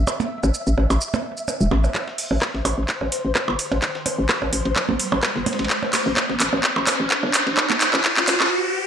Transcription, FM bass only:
0, 0, Header, 1, 2, 480
1, 0, Start_track
1, 0, Key_signature, 0, "minor"
1, 0, Tempo, 468750
1, 75, Time_signature, 4, 2, 24, 8
1, 9081, End_track
2, 0, Start_track
2, 0, Title_t, "FM bass"
2, 0, Program_c, 0, 39
2, 444, Note_on_c, 0, 33, 94
2, 519, Note_off_c, 0, 33, 0
2, 685, Note_on_c, 0, 33, 83
2, 759, Note_off_c, 0, 33, 0
2, 794, Note_on_c, 0, 33, 83
2, 883, Note_off_c, 0, 33, 0
2, 924, Note_on_c, 0, 33, 84
2, 999, Note_off_c, 0, 33, 0
2, 1645, Note_on_c, 0, 28, 88
2, 1720, Note_off_c, 0, 28, 0
2, 1755, Note_on_c, 0, 33, 92
2, 1924, Note_off_c, 0, 33, 0
2, 2365, Note_on_c, 0, 33, 94
2, 2439, Note_off_c, 0, 33, 0
2, 2605, Note_on_c, 0, 33, 85
2, 2679, Note_off_c, 0, 33, 0
2, 2714, Note_on_c, 0, 33, 85
2, 2803, Note_off_c, 0, 33, 0
2, 2844, Note_on_c, 0, 33, 85
2, 2919, Note_off_c, 0, 33, 0
2, 3084, Note_on_c, 0, 33, 97
2, 3159, Note_off_c, 0, 33, 0
2, 3325, Note_on_c, 0, 33, 91
2, 3399, Note_off_c, 0, 33, 0
2, 3564, Note_on_c, 0, 31, 98
2, 3639, Note_off_c, 0, 31, 0
2, 3805, Note_on_c, 0, 33, 81
2, 3879, Note_off_c, 0, 33, 0
2, 4285, Note_on_c, 0, 33, 96
2, 4360, Note_off_c, 0, 33, 0
2, 4525, Note_on_c, 0, 33, 86
2, 4599, Note_off_c, 0, 33, 0
2, 4635, Note_on_c, 0, 33, 84
2, 4723, Note_off_c, 0, 33, 0
2, 4765, Note_on_c, 0, 33, 88
2, 4840, Note_off_c, 0, 33, 0
2, 5005, Note_on_c, 0, 33, 96
2, 5079, Note_off_c, 0, 33, 0
2, 5246, Note_on_c, 0, 33, 95
2, 5320, Note_off_c, 0, 33, 0
2, 5485, Note_on_c, 0, 31, 99
2, 5560, Note_off_c, 0, 31, 0
2, 5725, Note_on_c, 0, 33, 83
2, 5800, Note_off_c, 0, 33, 0
2, 6206, Note_on_c, 0, 33, 97
2, 6280, Note_off_c, 0, 33, 0
2, 6445, Note_on_c, 0, 33, 85
2, 6520, Note_off_c, 0, 33, 0
2, 6556, Note_on_c, 0, 33, 89
2, 6644, Note_off_c, 0, 33, 0
2, 6685, Note_on_c, 0, 33, 89
2, 6759, Note_off_c, 0, 33, 0
2, 6925, Note_on_c, 0, 33, 100
2, 7000, Note_off_c, 0, 33, 0
2, 7165, Note_on_c, 0, 33, 95
2, 7240, Note_off_c, 0, 33, 0
2, 7405, Note_on_c, 0, 31, 99
2, 7480, Note_off_c, 0, 31, 0
2, 7645, Note_on_c, 0, 33, 81
2, 7720, Note_off_c, 0, 33, 0
2, 8125, Note_on_c, 0, 33, 103
2, 8200, Note_off_c, 0, 33, 0
2, 8365, Note_on_c, 0, 33, 88
2, 8440, Note_off_c, 0, 33, 0
2, 8475, Note_on_c, 0, 33, 89
2, 8563, Note_off_c, 0, 33, 0
2, 8606, Note_on_c, 0, 33, 89
2, 8680, Note_off_c, 0, 33, 0
2, 9081, End_track
0, 0, End_of_file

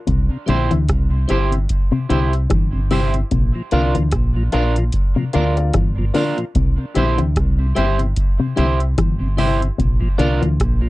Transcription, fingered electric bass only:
0, 0, Header, 1, 2, 480
1, 0, Start_track
1, 0, Tempo, 808625
1, 47, Time_signature, 4, 2, 24, 8
1, 6464, End_track
2, 0, Start_track
2, 0, Title_t, "Fingered electric bass"
2, 0, Program_c, 0, 33
2, 48, Note_on_c, 0, 36, 98
2, 168, Note_off_c, 0, 36, 0
2, 289, Note_on_c, 0, 34, 88
2, 409, Note_off_c, 0, 34, 0
2, 428, Note_on_c, 0, 38, 85
2, 517, Note_off_c, 0, 38, 0
2, 531, Note_on_c, 0, 36, 83
2, 741, Note_off_c, 0, 36, 0
2, 775, Note_on_c, 0, 31, 80
2, 983, Note_off_c, 0, 31, 0
2, 1251, Note_on_c, 0, 36, 84
2, 1461, Note_off_c, 0, 36, 0
2, 1492, Note_on_c, 0, 31, 93
2, 1913, Note_off_c, 0, 31, 0
2, 1970, Note_on_c, 0, 34, 93
2, 2090, Note_off_c, 0, 34, 0
2, 2215, Note_on_c, 0, 36, 93
2, 2332, Note_off_c, 0, 36, 0
2, 2355, Note_on_c, 0, 38, 87
2, 2442, Note_off_c, 0, 38, 0
2, 2449, Note_on_c, 0, 34, 80
2, 2660, Note_off_c, 0, 34, 0
2, 2696, Note_on_c, 0, 34, 75
2, 2904, Note_off_c, 0, 34, 0
2, 3179, Note_on_c, 0, 38, 89
2, 3386, Note_off_c, 0, 38, 0
2, 3412, Note_on_c, 0, 31, 83
2, 3622, Note_off_c, 0, 31, 0
2, 3894, Note_on_c, 0, 36, 96
2, 4012, Note_off_c, 0, 36, 0
2, 4134, Note_on_c, 0, 34, 96
2, 4252, Note_off_c, 0, 34, 0
2, 4268, Note_on_c, 0, 38, 85
2, 4358, Note_off_c, 0, 38, 0
2, 4372, Note_on_c, 0, 36, 86
2, 4582, Note_off_c, 0, 36, 0
2, 4613, Note_on_c, 0, 31, 79
2, 4822, Note_off_c, 0, 31, 0
2, 5098, Note_on_c, 0, 36, 87
2, 5305, Note_off_c, 0, 36, 0
2, 5334, Note_on_c, 0, 31, 87
2, 5754, Note_off_c, 0, 31, 0
2, 5813, Note_on_c, 0, 34, 91
2, 5931, Note_off_c, 0, 34, 0
2, 6052, Note_on_c, 0, 36, 83
2, 6171, Note_off_c, 0, 36, 0
2, 6186, Note_on_c, 0, 38, 87
2, 6277, Note_off_c, 0, 38, 0
2, 6295, Note_on_c, 0, 34, 86
2, 6464, Note_off_c, 0, 34, 0
2, 6464, End_track
0, 0, End_of_file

